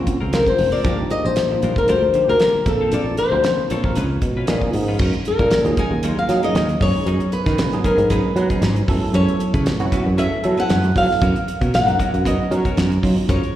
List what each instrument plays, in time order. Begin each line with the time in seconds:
Already playing: tine electric piano A#3 C4 C#4 F4 F#4
0.07 muted clean electric guitar stroke, kick, closed hi-hat
0.21 fretless electric bass C#2, clean electric guitar C4 F4 A#4
0.33 tine electric piano F3 A#3 C4 C#4 F4, clean electric guitar G#3 C4 F4 A#4, nylon-string guitar A#4, snare, closed hi-hat
0.47 nylon-string guitar C5, muted clean electric guitar stroke, kick
0.58 fretless electric bass F1, muted clean electric guitar stroke, open hi-hat
0.72 clean electric guitar C4 F4 A#4, nylon-string guitar D5, muted fretless electric bass stroke
0.84 fretless electric bass A#1, tine electric piano F3 A#3 D4 D#4 G4, clean electric guitar G3 D4 F4 A#4, kick, closed hi-hat
0.99 muted clean electric guitar stroke
1.10 nylon-string guitar D#5, muted fretless electric bass stroke, muted clean electric guitar stroke, closed hi-hat
1.25 fretless electric bass A#1, nylon-string guitar C5
1.36 muted clean electric guitar stroke, snare, closed hi-hat
1.51 tine electric piano F3 A#3 D4 D#4 F4
1.62 fretless electric bass A#1, clean electric guitar G3 D4 F4 A#4, closed hi-hat
1.76 nylon-string guitar A#4, muted clean electric guitar stroke, kick
1.88 fretless electric bass D2, clean electric guitar G3 D4 F4 A#4, nylon-string guitar C5, closed hi-hat
2.03 muted clean electric guitar stroke
2.14 tine electric piano F3 A#3 D4 D#4 G4, muted clean electric guitar stroke, closed hi-hat
2.28 fretless electric bass D2, clean electric guitar D4 F4 A#4, nylon-string guitar A#4
2.40 clean electric guitar G3 D4 F4 A#4, snare, closed hi-hat
2.55 muted fretless electric bass stroke, muted clean electric guitar stroke
2.66 fretless electric bass A#1, tine electric piano F3 A#3 C4 D4 A4, nylon-string guitar A4, muted clean electric guitar stroke, kick, closed hi-hat
2.81 clean electric guitar C4 F4 A4
2.92 fretless electric bass A#1, clean electric guitar A#3 C4 F4 A4, nylon-string guitar D5, closed hi-hat
3.07 muted clean electric guitar stroke
3.17 nylon-string guitar C5, muted fretless electric bass stroke, muted clean electric guitar stroke, closed hi-hat
3.31 fretless electric bass D2, tine electric piano F3 A#3 C4 D4 C5
3.44 muted clean electric guitar stroke, snare, closed hi-hat
3.59 muted fretless electric bass stroke
3.70 fretless electric bass A#1, clean electric guitar A#3 C4 F4 A4, nylon-string guitar C#5, closed hi-hat
3.84 tine electric piano F3 A#3 C4 D4 A#4, muted clean electric guitar stroke, kick
3.95 fretless electric bass C#2, clean electric guitar G#3 C#4 F4 B4, closed hi-hat
4.11 muted clean electric guitar stroke
4.22 fretless electric bass B2, muted clean electric guitar stroke, kick, closed hi-hat
4.37 clean electric guitar C#4 F4 B4
4.47 fretless electric bass A#2, tine electric piano F3 B3 C#4 D#4 G#4, clean electric guitar G#3 C#4 F4 B4, snare, closed hi-hat
4.61 muted clean electric guitar stroke, kick
4.73 fretless electric bass G#2, muted clean electric guitar stroke, open hi-hat
4.88 clean electric guitar C#4 F4 B4
4.99 fretless electric bass F#2, clean electric guitar G#3 C#4 D#4 A#4, kick, crash
5.13 muted clean electric guitar stroke, closed hi-hat
5.25 nylon-string guitar A#4, muted fretless electric bass stroke, muted clean electric guitar stroke, closed hi-hat
5.39 fretless electric bass A#2, clean electric guitar C#4 D#4 A#4, kick, closed hi-hat
5.51 muted clean electric guitar stroke, snare, closed hi-hat
5.65 fretless electric bass D#2, tine electric piano F#3 A#3 C#4 D#4 G#4, closed hi-hat
5.77 clean electric guitar G#3 C#4 D#4 A#4, nylon-string guitar G#5, kick, closed hi-hat
5.91 fretless electric bass D#2, muted clean electric guitar stroke
6.03 tine electric piano F#3 A#3 C#4 D#4 F4, clean electric guitar G#3 C#4 D#4 A#4, closed hi-hat
6.18 nylon-string guitar F5, muted clean electric guitar stroke
6.29 fretless electric bass F#3, tine electric piano F#3 A#3 C#4 D#4 G#4, muted clean electric guitar stroke, snare, closed hi-hat
6.43 clean electric guitar C#4 D#4 A#4, nylon-string guitar D#5, closed hi-hat
6.55 fretless electric bass D#2, clean electric guitar G#3 C#4 D#4 A#4, snare, closed hi-hat
6.69 muted clean electric guitar stroke, closed hi-hat
6.81 fretless electric bass F#2, tine electric piano F#3 B3 C#4 D#4 G#4, nylon-string guitar C#5, muted clean electric guitar stroke, kick, open hi-hat
7.06 fretless electric bass F#2, clean electric guitar F#3 C#4 D#4 G#4, closed hi-hat
7.20 muted clean electric guitar stroke, closed hi-hat
7.32 nylon-string guitar B4, muted clean electric guitar stroke, muted fretless electric bass stroke, closed hi-hat
7.46 fretless electric bass D#3, clean electric guitar C#4 D#4 G#4, kick, snare, closed hi-hat
7.58 muted clean electric guitar stroke, snare, closed hi-hat
7.72 fretless electric bass G#2, tine electric piano F#3 B3 C#4 D#4 G#4, closed hi-hat
7.84 clean electric guitar F#3 C#4 D#4 G#4, nylon-string guitar A#4, muted fretless electric bass stroke, kick, closed hi-hat
7.98 fretless electric bass G#2, muted clean electric guitar stroke, closed hi-hat
8.10 clean electric guitar F#3 C#4 D#4 G#4, tine electric piano F#3 B3 C#4 D#4 G#4, nylon-string guitar B4, kick, closed hi-hat
8.24 muted clean electric guitar stroke
8.36 fretless electric bass F#3, tine electric piano F#3 B3 C#4 D#4 B4, muted clean electric guitar stroke, closed hi-hat
8.50 clean electric guitar C#4 D#4 G#4, kick, closed hi-hat
8.62 fretless electric bass G#2, clean electric guitar F#3 C#4 D#4 G#4, snare, closed hi-hat
8.76 muted clean electric guitar stroke, closed hi-hat
8.88 fretless electric bass F#2, tine electric piano F#3 B3 C#4 E4 A4, muted clean electric guitar stroke, kick, open hi-hat
9.14 fretless electric bass F#2, clean electric guitar F#3 C#4 E4 B4, nylon-string guitar C#5, closed hi-hat
9.28 muted clean electric guitar stroke, closed hi-hat
9.40 muted fretless electric bass stroke, muted clean electric guitar stroke, closed hi-hat
9.54 fretless electric bass C#3, clean electric guitar C#4 E4 B4, kick, closed hi-hat
9.66 muted clean electric guitar stroke, snare, closed hi-hat
9.80 fretless electric bass F#2, tine electric piano F#3 B3 C#4 E4 F#4, closed hi-hat
9.92 clean electric guitar F#3 C#4 E4 B4, muted fretless electric bass stroke, kick, closed hi-hat
10.05 fretless electric bass F#2, muted clean electric guitar stroke
10.17 tine electric piano F#3 B3 C#4 E4 A4, clean electric guitar F#3 C#4 E4 B4, nylon-string guitar E5, closed hi-hat
10.32 muted clean electric guitar stroke
10.43 tine electric piano F#3 B3 C#4 E4 A4, fretless electric bass F#3, muted clean electric guitar stroke, closed hi-hat
10.57 clean electric guitar C#4 E4 B4, nylon-string guitar F#5, closed hi-hat
10.69 fretless electric bass F#2, clean electric guitar F#3 C#4 E4 B4, snare, closed hi-hat
10.84 muted clean electric guitar stroke, closed hi-hat
10.96 fretless electric bass F#3, tine electric piano F#3 B3 C#4 E4 A4, nylon-string guitar F5, muted clean electric guitar stroke, kick, open hi-hat
11.11 snare
11.22 fretless electric bass F#2, clean electric guitar B3 C#4 F#4 A#4, kick, closed hi-hat
11.36 muted clean electric guitar stroke, closed hi-hat
11.48 muted clean electric guitar stroke, muted fretless electric bass stroke, closed hi-hat
11.61 fretless electric bass B2, clean electric guitar C#4 F#4 A#4, kick, closed hi-hat
11.74 nylon-string guitar F#5, snare, closed hi-hat
11.86 fretless electric bass F#2, tine electric piano F#3 B3 C#4 D#4 A#4, closed hi-hat
11.99 clean electric guitar B3 C#4 F#4 A#4, muted fretless electric bass stroke, kick, closed hi-hat
12.13 fretless electric bass F#2, muted clean electric guitar stroke, closed hi-hat
12.25 tine electric piano F#3 B3 C#4 D#4 B4, clean electric guitar B3 C#4 F#4 A#4, nylon-string guitar D#5, kick, closed hi-hat
12.39 muted clean electric guitar stroke
12.51 tine electric piano F#3 B3 C#4 D#4 A#4, fretless electric bass F#3, nylon-string guitar C#5, muted clean electric guitar stroke, closed hi-hat
12.65 clean electric guitar C#4 F#4 A#4, kick, closed hi-hat
12.77 fretless electric bass F#2, clean electric guitar B3 C#4 F#4 A#4, snare, closed hi-hat
12.92 muted clean electric guitar stroke, closed hi-hat
13.03 tine electric piano F#3 B3 C#4 D#4 F4, fretless electric bass F#3, muted clean electric guitar stroke, kick, open hi-hat
13.29 fretless electric bass F#2, clean electric guitar G#3 C#4 D#4 A#4, nylon-string guitar C#5, kick, closed hi-hat
13.43 muted clean electric guitar stroke, closed hi-hat